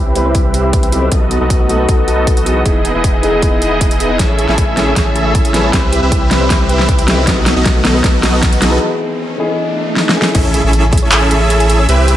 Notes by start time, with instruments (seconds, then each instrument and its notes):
Already playing: sub bass C2, analog synth pad C3 G3 E4 B4, grand piano G3 C4 E4 B4, supersaw synth C4 E4 G4 B4 E5
0.06 synth arpeggio sound G5
0.15 grand piano G3 C4 E4 B4, synth arpeggio sound G4, closed hi-hat
0.24 grand piano G3 C4 E4, synth arpeggio sound C5
0.28 grand piano B4
0.35 synth arpeggio sound G4, kick, closed hi-hat
0.45 synth arpeggio sound C5
0.54 synth arpeggio sound G4, closed hi-hat
0.64 synth arpeggio sound E5
0.73 synth arpeggio sound G4, kick, closed hi-hat
0.83 synth arpeggio sound G5, closed hi-hat
0.91 grand piano F#3 B3 D#4, synth arpeggio sound G4, closed hi-hat
0.95 grand piano A4
1.02 synth arpeggio sound C5
1.11 sub bass B1, analog synth pad A3 F#4, supersaw synth B3 D#4 F#4 A4 D#5, synth arpeggio sound F#4, kick, closed hi-hat
1.22 synth arpeggio sound B4
1.31 synth arpeggio sound F#4, closed hi-hat
1.41 sub bass B1, supersaw synth B3 D#4 F#4 A4 D#5, synth arpeggio sound D#5
1.50 synth arpeggio sound F#4, kick, closed hi-hat
1.60 synth arpeggio sound F#5
1.69 grand piano F#3 B3 D#4 A4, synth arpeggio sound F#4, closed hi-hat
1.77 grand piano F#3 B3 D#4 A4, synth arpeggio sound B4
1.89 sub bass B1, supersaw synth B3 D#4 F#4 A4 D#5, synth arpeggio sound F#4, kick, closed hi-hat
1.99 synth arpeggio sound B4
2.08 synth arpeggio sound F#4, closed hi-hat
2.18 synth arpeggio sound D#5
2.27 synth arpeggio sound F#4, kick, closed hi-hat
2.37 synth arpeggio sound F#5, closed hi-hat
2.44 grand piano E3 B3 D#4 G#4, synth arpeggio sound F#4, closed hi-hat
2.56 synth arpeggio sound B4
2.65 sub bass E1, supersaw synth B3 D#4 E4 G#4 D#5, synth arpeggio sound G#4, kick, closed hi-hat
2.75 synth arpeggio sound D#5
2.85 synth arpeggio sound G#4, closed hi-hat
2.95 sub bass E1, supersaw synth B3 D#4 E4 G#4 D#5, synth arpeggio sound E5
3.04 synth arpeggio sound G#4, kick, closed hi-hat
3.14 synth arpeggio sound G#5
3.22 grand piano E3 B3 D#4 G#4, synth arpeggio sound G#4, closed hi-hat
3.31 grand piano E3 B3 G#4 D#5, synth arpeggio sound D#5
3.42 synth arpeggio sound G#4, kick, closed hi-hat
3.53 synth arpeggio sound D#5
3.62 synth arpeggio sound G#4, closed hi-hat
3.72 synth arpeggio sound E5
3.81 synth arpeggio sound G#4, kick, closed hi-hat
3.91 synth arpeggio sound G#5, closed hi-hat
4.00 synth arpeggio sound G#4, closed hi-hat
4.10 synth arpeggio sound D#5
4.19 sub bass A1, analog synth pad C#3 A3 E4, supersaw synth C#4 E4 G#4 A4 E5, synth arpeggio sound G#4, kick, snare, closed hi-hat, riser
4.30 synth arpeggio sound C#5
4.39 synth arpeggio sound G#4, closed hi-hat
4.49 sub bass A1, supersaw synth C#4 E4 G#4 A4 E5, synth arpeggio sound E5, snare
4.58 synth arpeggio sound G#4, kick, closed hi-hat
4.68 synth arpeggio sound G#5
4.76 grand piano E3 A3 C#4 G#4, synth arpeggio sound G#4, snare, closed hi-hat
4.85 grand piano E3 A3 C#4, synth arpeggio sound C#5
4.89 grand piano G#5
4.96 sub bass A1, supersaw synth C#4 E4 G#4 A4 E5, synth arpeggio sound G#4, kick, snare, closed hi-hat
5.06 synth arpeggio sound C#5
5.16 synth arpeggio sound G#4, closed hi-hat
5.26 synth arpeggio sound E5
5.35 synth arpeggio sound G#4, kick, closed hi-hat
5.45 synth arpeggio sound G#5, closed hi-hat
5.52 grand piano G3 C4 E4 B4, synth arpeggio sound G#4, snare, closed hi-hat
5.64 synth arpeggio sound C#5
5.73 sub bass C2, analog synth pad C3 G3 B4, supersaw synth C4 E4 G4 B4 E5, synth arpeggio sound G4, kick, snare, closed hi-hat
5.83 synth arpeggio sound C5
5.92 synth arpeggio sound G4, closed hi-hat
6.02 sub bass C2, supersaw synth C4 E4 G4 B4 E5, synth arpeggio sound E5
6.12 synth arpeggio sound G4, kick, closed hi-hat
6.22 synth arpeggio sound G5
6.30 grand piano G3 C4 E4 B4, synth arpeggio sound G4, snare, closed hi-hat
6.39 grand piano G3 C4 E4, synth arpeggio sound C5
6.43 grand piano B4
6.50 synth arpeggio sound G4, kick, snare, closed hi-hat
6.60 synth arpeggio sound C5
6.69 synth arpeggio sound G4, closed hi-hat
6.79 synth arpeggio sound E5, snare
6.89 kick, closed hi-hat
6.99 synth arpeggio sound G5, closed hi-hat
7.06 grand piano F#3 B3 D#4, synth arpeggio sound G4, snare, closed hi-hat
7.10 grand piano A4
7.18 synth arpeggio sound C5
7.27 sub bass B1, analog synth pad D#3 A3 B3 F#4, supersaw synth B3 D#4 F#4 A4 D#5, synth arpeggio sound F#4, kick, snare, closed hi-hat
7.37 synth arpeggio sound B4
7.46 synth arpeggio sound F#4, snare, closed hi-hat
7.56 sub bass B1, supersaw synth B3 D#4 F#4 A4 D#5, synth arpeggio sound D#5
7.65 synth arpeggio sound F#4, kick, snare, closed hi-hat
7.75 synth arpeggio sound F#5
7.84 grand piano F#3 B3 D#4 A4, synth arpeggio sound F#4, snare, closed hi-hat
7.93 grand piano F#3 B3 D#4 A4, synth arpeggio sound B4
8.04 sub bass B1, supersaw synth B3 D#4 F#4 A4 D#5, synth arpeggio sound F#4, kick, snare, closed hi-hat
8.14 synth arpeggio sound B4
8.23 synth arpeggio sound F#4, snare, closed hi-hat
8.33 synth arpeggio sound D#5
8.42 synth arpeggio sound F#4, kick, snare, closed hi-hat
8.52 synth arpeggio sound F#5, closed hi-hat
8.60 grand piano E3 B3 D#4, synth arpeggio sound F#4, snare, closed hi-hat
8.64 grand piano G#4
8.72 synth arpeggio sound B4
9.38 grand piano E3 B3 D#4 G#4
9.47 grand piano E3 B3 D#4 G#4
9.58 swell
9.96 snare
10.09 snare
10.15 grand piano E3 A3 C#4 G#4
10.22 snare
10.35 sub bass A1, supersaw synth C#4 E4 G#4 A4 E5, synth arpeggio sound G#4, kick, closed hi-hat, crash, impact
10.45 synth arpeggio sound C#5
10.54 synth arpeggio sound G#4, closed hi-hat
10.64 sub bass A1, supersaw synth C#4 E4 G#4 A4 E5, synth arpeggio sound E5
10.73 synth arpeggio sound G#4, closed hi-hat
10.83 synth arpeggio sound G#5
10.93 synth arpeggio sound G#4, kick, closed hi-hat
10.97 closed hi-hat
11.03 synth arpeggio sound C#5
11.12 sub bass A1, supersaw synth C#4 E4 G#4 A4 E5, synth arpeggio sound G#4, clap, closed hi-hat
11.22 synth arpeggio sound C#5
11.31 synth arpeggio sound G#4, closed hi-hat
11.41 synth arpeggio sound E5
11.50 synth arpeggio sound G#4, closed hi-hat
11.60 synth arpeggio sound G#5, closed hi-hat
11.69 synth arpeggio sound G#4, closed hi-hat
11.79 synth arpeggio sound C#5
11.89 sub bass C2, supersaw synth C4 E4 G4 B4 E5, synth arpeggio sound G4, closed hi-hat
11.99 synth arpeggio sound C5
12.08 synth arpeggio sound G4, closed hi-hat